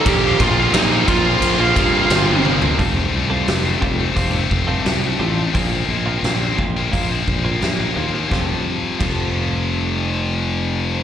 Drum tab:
CC |----------------|----------------|----------------|----x-----------|
RD |x-x-x-x-x-x-x---|----------------|----------------|----------------|
HH |----------------|o---o---o---o---|o---o---o---o---|----------------|
SD |----o-------o---|----o-------o---|----o-------o---|o---------------|
T1 |--------------o-|----------------|----------------|----------------|
FT |---------------o|----------------|----------------|----------------|
BD |o-o---o---o-----|o-----o-o-o-----|o-----o-o-o-----|o---o-----------|